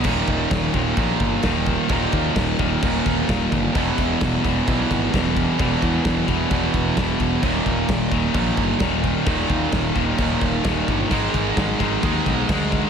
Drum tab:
CC |xxxxxxxx|xxxxxxxx|xxxxxxxx|xxxxxxxx|
SD |--o---o-|--o---o-|--o---o-|--o---o-|
BD |oooooooo|oooooooo|oooooooo|oooooooo|

CC |xxxxxxxx|xxxxxxxx|xxxxxxxx|
SD |--o---o-|--o---o-|--o---o-|
BD |oooooooo|oooooooo|oooooooo|